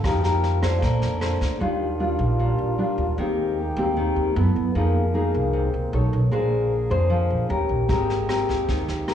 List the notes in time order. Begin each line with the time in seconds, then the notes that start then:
Already playing: A#3
0.03 F2 F3 D#4 G4 A#4, kick, cross-stick, snare
0.23 D#4 G4 A#4, snare
0.44 snare
0.62 D4 A4 C5, kick, cross-stick, snare
0.81 A#1 D3 A#3 C4 A4, kick, snare
1.02 F2, snare
1.20 D4 A4 C5, cross-stick, snare
1.41 D2, kick, snare
1.59 D#2 D#3 G3 D4 F4
2.00 G3 D4 F4
2.19 A#1
2.40 A#2
2.58 A#1
2.78 G3 D4 F4
2.98 D#2
3.18 D#2 C3 D#3 G#3 A#3 C4 G4
3.76 D#2 A#3 C4 G4
3.97 D#3
4.16 D#2
4.36 F#2 E3 A3 B3 E4 A4
4.56 F#2
4.74 F2 D#3 F3 G#3 A#3 D#4 G#4
5.14 A#3 D#4 G#4
5.34 C2
5.53 C3
5.74 C2
5.92 B1 B3 C#4 D#4 A4 C#5
6.13 B1
6.31 A#1 D3 A#3 C4 D4 G#4 C5
6.90 F2 D4 G#4 C5
7.10 F3
7.30 A#1
7.49 D#2 D#3 A#3 C#4 G4 A#4
7.69 A#1
7.87 G#1 C3 G#3 C4 G4 A#4, kick, snare
8.10 snare
8.28 C4 G4 A#4, cross-stick, snare
8.49 D#2, kick, snare
8.68 D#3, kick, snare
8.88 D#2, snare
9.07 C4 G4 A#4, cross-stick, snare